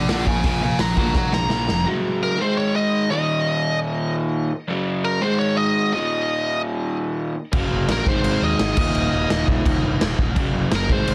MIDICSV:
0, 0, Header, 1, 5, 480
1, 0, Start_track
1, 0, Tempo, 354191
1, 600, Time_signature, 4, 2, 24, 8
1, 15104, End_track
2, 0, Start_track
2, 0, Title_t, "Lead electric guitar"
2, 0, Program_c, 0, 29
2, 126, Note_on_c, 0, 74, 86
2, 133, Note_on_c, 0, 78, 98
2, 347, Note_off_c, 0, 74, 0
2, 358, Note_off_c, 0, 78, 0
2, 363, Note_on_c, 0, 77, 82
2, 374, Note_on_c, 0, 80, 90
2, 586, Note_off_c, 0, 77, 0
2, 598, Note_off_c, 0, 80, 0
2, 613, Note_on_c, 0, 77, 83
2, 621, Note_on_c, 0, 80, 94
2, 830, Note_off_c, 0, 77, 0
2, 843, Note_off_c, 0, 80, 0
2, 850, Note_on_c, 0, 77, 83
2, 863, Note_on_c, 0, 80, 96
2, 1068, Note_off_c, 0, 77, 0
2, 1068, Note_on_c, 0, 78, 90
2, 1086, Note_off_c, 0, 80, 0
2, 1086, Note_on_c, 0, 82, 100
2, 1305, Note_off_c, 0, 78, 0
2, 1316, Note_off_c, 0, 82, 0
2, 1321, Note_on_c, 0, 78, 84
2, 1333, Note_on_c, 0, 82, 99
2, 1544, Note_off_c, 0, 78, 0
2, 1559, Note_off_c, 0, 82, 0
2, 1581, Note_on_c, 0, 78, 90
2, 1586, Note_on_c, 0, 82, 85
2, 1795, Note_off_c, 0, 78, 0
2, 1799, Note_off_c, 0, 82, 0
2, 1816, Note_on_c, 0, 82, 121
2, 2505, Note_off_c, 0, 82, 0
2, 3026, Note_on_c, 0, 70, 89
2, 3236, Note_off_c, 0, 70, 0
2, 3272, Note_on_c, 0, 72, 86
2, 3479, Note_off_c, 0, 72, 0
2, 3496, Note_on_c, 0, 73, 117
2, 3732, Note_off_c, 0, 73, 0
2, 3737, Note_on_c, 0, 75, 124
2, 4201, Note_off_c, 0, 75, 0
2, 4217, Note_on_c, 0, 75, 97
2, 5111, Note_off_c, 0, 75, 0
2, 6842, Note_on_c, 0, 70, 98
2, 7071, Note_on_c, 0, 72, 93
2, 7085, Note_off_c, 0, 70, 0
2, 7295, Note_off_c, 0, 72, 0
2, 7306, Note_on_c, 0, 73, 121
2, 7546, Note_off_c, 0, 73, 0
2, 7546, Note_on_c, 0, 75, 127
2, 8026, Note_off_c, 0, 75, 0
2, 8042, Note_on_c, 0, 75, 94
2, 8944, Note_off_c, 0, 75, 0
2, 10732, Note_on_c, 0, 70, 95
2, 10950, Note_on_c, 0, 72, 93
2, 10951, Note_off_c, 0, 70, 0
2, 11428, Note_off_c, 0, 72, 0
2, 11440, Note_on_c, 0, 75, 119
2, 11891, Note_off_c, 0, 75, 0
2, 11907, Note_on_c, 0, 75, 94
2, 12800, Note_off_c, 0, 75, 0
2, 14576, Note_on_c, 0, 70, 84
2, 14774, Note_off_c, 0, 70, 0
2, 14798, Note_on_c, 0, 72, 92
2, 15104, Note_off_c, 0, 72, 0
2, 15104, End_track
3, 0, Start_track
3, 0, Title_t, "Overdriven electric guitar"
3, 0, Program_c, 1, 29
3, 120, Note_on_c, 1, 46, 91
3, 123, Note_on_c, 1, 53, 94
3, 132, Note_on_c, 1, 58, 100
3, 346, Note_off_c, 1, 46, 0
3, 347, Note_off_c, 1, 53, 0
3, 351, Note_off_c, 1, 58, 0
3, 366, Note_on_c, 1, 46, 83
3, 371, Note_on_c, 1, 53, 84
3, 579, Note_off_c, 1, 46, 0
3, 581, Note_off_c, 1, 53, 0
3, 599, Note_on_c, 1, 46, 95
3, 608, Note_on_c, 1, 53, 102
3, 614, Note_on_c, 1, 58, 105
3, 825, Note_off_c, 1, 46, 0
3, 829, Note_off_c, 1, 53, 0
3, 832, Note_off_c, 1, 58, 0
3, 850, Note_on_c, 1, 46, 74
3, 854, Note_on_c, 1, 53, 90
3, 1061, Note_off_c, 1, 46, 0
3, 1063, Note_off_c, 1, 53, 0
3, 1088, Note_on_c, 1, 53, 93
3, 1091, Note_on_c, 1, 46, 89
3, 1290, Note_off_c, 1, 46, 0
3, 1300, Note_off_c, 1, 53, 0
3, 1307, Note_on_c, 1, 46, 99
3, 1326, Note_on_c, 1, 53, 99
3, 1331, Note_on_c, 1, 58, 113
3, 1539, Note_off_c, 1, 46, 0
3, 1545, Note_off_c, 1, 53, 0
3, 1551, Note_off_c, 1, 58, 0
3, 1557, Note_on_c, 1, 46, 94
3, 1561, Note_on_c, 1, 53, 93
3, 1768, Note_off_c, 1, 46, 0
3, 1770, Note_off_c, 1, 53, 0
3, 1784, Note_on_c, 1, 46, 77
3, 1786, Note_on_c, 1, 53, 78
3, 2007, Note_off_c, 1, 46, 0
3, 2009, Note_off_c, 1, 53, 0
3, 2028, Note_on_c, 1, 46, 88
3, 2038, Note_on_c, 1, 53, 101
3, 2042, Note_on_c, 1, 58, 98
3, 2248, Note_off_c, 1, 46, 0
3, 2255, Note_off_c, 1, 53, 0
3, 2264, Note_on_c, 1, 46, 74
3, 2266, Note_off_c, 1, 58, 0
3, 2271, Note_on_c, 1, 53, 90
3, 2482, Note_on_c, 1, 42, 93
3, 2487, Note_off_c, 1, 46, 0
3, 2491, Note_off_c, 1, 53, 0
3, 2508, Note_on_c, 1, 49, 98
3, 2521, Note_on_c, 1, 54, 110
3, 3205, Note_off_c, 1, 42, 0
3, 3218, Note_off_c, 1, 49, 0
3, 3225, Note_off_c, 1, 54, 0
3, 3227, Note_on_c, 1, 44, 91
3, 3238, Note_on_c, 1, 51, 102
3, 3256, Note_on_c, 1, 56, 113
3, 4177, Note_off_c, 1, 44, 0
3, 4182, Note_off_c, 1, 51, 0
3, 4189, Note_on_c, 1, 39, 99
3, 4191, Note_off_c, 1, 56, 0
3, 4207, Note_on_c, 1, 46, 94
3, 4224, Note_on_c, 1, 51, 118
3, 6096, Note_off_c, 1, 39, 0
3, 6105, Note_off_c, 1, 46, 0
3, 6114, Note_off_c, 1, 51, 0
3, 6339, Note_on_c, 1, 42, 94
3, 6361, Note_on_c, 1, 49, 101
3, 6377, Note_on_c, 1, 54, 109
3, 7052, Note_off_c, 1, 42, 0
3, 7058, Note_off_c, 1, 49, 0
3, 7064, Note_on_c, 1, 44, 97
3, 7071, Note_off_c, 1, 54, 0
3, 7083, Note_on_c, 1, 51, 101
3, 7098, Note_on_c, 1, 56, 115
3, 8015, Note_off_c, 1, 44, 0
3, 8024, Note_off_c, 1, 51, 0
3, 8032, Note_off_c, 1, 56, 0
3, 8039, Note_on_c, 1, 39, 89
3, 8061, Note_on_c, 1, 46, 103
3, 8081, Note_on_c, 1, 51, 98
3, 9944, Note_off_c, 1, 39, 0
3, 9954, Note_off_c, 1, 46, 0
3, 9965, Note_off_c, 1, 51, 0
3, 10192, Note_on_c, 1, 42, 92
3, 10220, Note_on_c, 1, 49, 102
3, 10231, Note_on_c, 1, 54, 102
3, 10900, Note_off_c, 1, 42, 0
3, 10906, Note_off_c, 1, 49, 0
3, 10911, Note_on_c, 1, 44, 97
3, 10920, Note_off_c, 1, 54, 0
3, 10941, Note_on_c, 1, 51, 113
3, 10952, Note_on_c, 1, 56, 101
3, 11861, Note_off_c, 1, 44, 0
3, 11876, Note_off_c, 1, 51, 0
3, 11882, Note_off_c, 1, 56, 0
3, 11885, Note_on_c, 1, 39, 98
3, 11902, Note_on_c, 1, 46, 106
3, 11925, Note_on_c, 1, 51, 111
3, 13790, Note_off_c, 1, 39, 0
3, 13799, Note_off_c, 1, 46, 0
3, 13810, Note_off_c, 1, 51, 0
3, 14028, Note_on_c, 1, 42, 91
3, 14053, Note_on_c, 1, 49, 102
3, 14069, Note_on_c, 1, 54, 112
3, 14741, Note_off_c, 1, 42, 0
3, 14754, Note_off_c, 1, 49, 0
3, 14761, Note_on_c, 1, 44, 92
3, 14762, Note_off_c, 1, 54, 0
3, 14786, Note_on_c, 1, 51, 100
3, 14803, Note_on_c, 1, 56, 102
3, 15104, Note_off_c, 1, 44, 0
3, 15104, Note_off_c, 1, 51, 0
3, 15104, Note_off_c, 1, 56, 0
3, 15104, End_track
4, 0, Start_track
4, 0, Title_t, "Picked electric bass"
4, 0, Program_c, 2, 34
4, 133, Note_on_c, 2, 34, 99
4, 345, Note_off_c, 2, 34, 0
4, 362, Note_on_c, 2, 34, 96
4, 579, Note_off_c, 2, 34, 0
4, 600, Note_on_c, 2, 34, 103
4, 817, Note_off_c, 2, 34, 0
4, 826, Note_on_c, 2, 46, 91
4, 1050, Note_off_c, 2, 46, 0
4, 1072, Note_on_c, 2, 34, 102
4, 1293, Note_off_c, 2, 34, 0
4, 1319, Note_on_c, 2, 34, 94
4, 1537, Note_off_c, 2, 34, 0
4, 1556, Note_on_c, 2, 34, 97
4, 1775, Note_off_c, 2, 34, 0
4, 1815, Note_on_c, 2, 34, 91
4, 2025, Note_off_c, 2, 34, 0
4, 2056, Note_on_c, 2, 34, 99
4, 2266, Note_off_c, 2, 34, 0
4, 2301, Note_on_c, 2, 29, 93
4, 2508, Note_off_c, 2, 29, 0
4, 10210, Note_on_c, 2, 30, 97
4, 10371, Note_off_c, 2, 30, 0
4, 10440, Note_on_c, 2, 30, 94
4, 10605, Note_off_c, 2, 30, 0
4, 10678, Note_on_c, 2, 34, 93
4, 10844, Note_off_c, 2, 34, 0
4, 10930, Note_on_c, 2, 32, 94
4, 11092, Note_off_c, 2, 32, 0
4, 11154, Note_on_c, 2, 32, 98
4, 11321, Note_off_c, 2, 32, 0
4, 11412, Note_on_c, 2, 39, 93
4, 11573, Note_off_c, 2, 39, 0
4, 11650, Note_on_c, 2, 32, 103
4, 11812, Note_off_c, 2, 32, 0
4, 11890, Note_on_c, 2, 27, 102
4, 12052, Note_off_c, 2, 27, 0
4, 12133, Note_on_c, 2, 27, 108
4, 12294, Note_off_c, 2, 27, 0
4, 12372, Note_on_c, 2, 27, 92
4, 12533, Note_off_c, 2, 27, 0
4, 12617, Note_on_c, 2, 27, 104
4, 12777, Note_off_c, 2, 27, 0
4, 12849, Note_on_c, 2, 27, 100
4, 13012, Note_off_c, 2, 27, 0
4, 13086, Note_on_c, 2, 27, 98
4, 13250, Note_off_c, 2, 27, 0
4, 13313, Note_on_c, 2, 31, 93
4, 13481, Note_off_c, 2, 31, 0
4, 13572, Note_on_c, 2, 27, 111
4, 13734, Note_off_c, 2, 27, 0
4, 13802, Note_on_c, 2, 27, 95
4, 13968, Note_off_c, 2, 27, 0
4, 14039, Note_on_c, 2, 30, 101
4, 14206, Note_off_c, 2, 30, 0
4, 14265, Note_on_c, 2, 30, 97
4, 14437, Note_off_c, 2, 30, 0
4, 14525, Note_on_c, 2, 30, 99
4, 14768, Note_off_c, 2, 30, 0
4, 14768, Note_on_c, 2, 32, 99
4, 14932, Note_off_c, 2, 32, 0
4, 15011, Note_on_c, 2, 32, 98
4, 15104, Note_off_c, 2, 32, 0
4, 15104, End_track
5, 0, Start_track
5, 0, Title_t, "Drums"
5, 122, Note_on_c, 9, 46, 64
5, 123, Note_on_c, 9, 38, 122
5, 257, Note_off_c, 9, 46, 0
5, 259, Note_off_c, 9, 38, 0
5, 361, Note_on_c, 9, 36, 86
5, 496, Note_off_c, 9, 36, 0
5, 590, Note_on_c, 9, 46, 60
5, 597, Note_on_c, 9, 36, 120
5, 726, Note_off_c, 9, 46, 0
5, 732, Note_off_c, 9, 36, 0
5, 1071, Note_on_c, 9, 46, 61
5, 1072, Note_on_c, 9, 38, 117
5, 1206, Note_off_c, 9, 46, 0
5, 1208, Note_off_c, 9, 38, 0
5, 1315, Note_on_c, 9, 36, 88
5, 1451, Note_off_c, 9, 36, 0
5, 1549, Note_on_c, 9, 38, 68
5, 1553, Note_on_c, 9, 36, 123
5, 1685, Note_off_c, 9, 38, 0
5, 1689, Note_off_c, 9, 36, 0
5, 1796, Note_on_c, 9, 38, 74
5, 1932, Note_off_c, 9, 38, 0
5, 2031, Note_on_c, 9, 38, 99
5, 2166, Note_off_c, 9, 38, 0
5, 2284, Note_on_c, 9, 38, 92
5, 2419, Note_off_c, 9, 38, 0
5, 10201, Note_on_c, 9, 49, 69
5, 10205, Note_on_c, 9, 36, 116
5, 10336, Note_off_c, 9, 49, 0
5, 10340, Note_off_c, 9, 36, 0
5, 10686, Note_on_c, 9, 49, 71
5, 10688, Note_on_c, 9, 38, 119
5, 10822, Note_off_c, 9, 49, 0
5, 10823, Note_off_c, 9, 38, 0
5, 10927, Note_on_c, 9, 36, 108
5, 11063, Note_off_c, 9, 36, 0
5, 11169, Note_on_c, 9, 49, 74
5, 11305, Note_off_c, 9, 49, 0
5, 11646, Note_on_c, 9, 49, 72
5, 11647, Note_on_c, 9, 38, 119
5, 11781, Note_off_c, 9, 49, 0
5, 11783, Note_off_c, 9, 38, 0
5, 11881, Note_on_c, 9, 49, 104
5, 11887, Note_on_c, 9, 36, 103
5, 12017, Note_off_c, 9, 49, 0
5, 12023, Note_off_c, 9, 36, 0
5, 12125, Note_on_c, 9, 49, 67
5, 12261, Note_off_c, 9, 49, 0
5, 12607, Note_on_c, 9, 49, 67
5, 12608, Note_on_c, 9, 38, 124
5, 12742, Note_off_c, 9, 49, 0
5, 12744, Note_off_c, 9, 38, 0
5, 12847, Note_on_c, 9, 36, 91
5, 12983, Note_off_c, 9, 36, 0
5, 13085, Note_on_c, 9, 36, 124
5, 13088, Note_on_c, 9, 49, 73
5, 13220, Note_off_c, 9, 36, 0
5, 13224, Note_off_c, 9, 49, 0
5, 13567, Note_on_c, 9, 49, 65
5, 13568, Note_on_c, 9, 38, 126
5, 13702, Note_off_c, 9, 49, 0
5, 13704, Note_off_c, 9, 38, 0
5, 13804, Note_on_c, 9, 36, 86
5, 13939, Note_off_c, 9, 36, 0
5, 14042, Note_on_c, 9, 36, 123
5, 14043, Note_on_c, 9, 49, 67
5, 14177, Note_off_c, 9, 36, 0
5, 14178, Note_off_c, 9, 49, 0
5, 14520, Note_on_c, 9, 49, 70
5, 14522, Note_on_c, 9, 38, 123
5, 14656, Note_off_c, 9, 49, 0
5, 14657, Note_off_c, 9, 38, 0
5, 14765, Note_on_c, 9, 36, 107
5, 14900, Note_off_c, 9, 36, 0
5, 15008, Note_on_c, 9, 49, 77
5, 15104, Note_off_c, 9, 49, 0
5, 15104, End_track
0, 0, End_of_file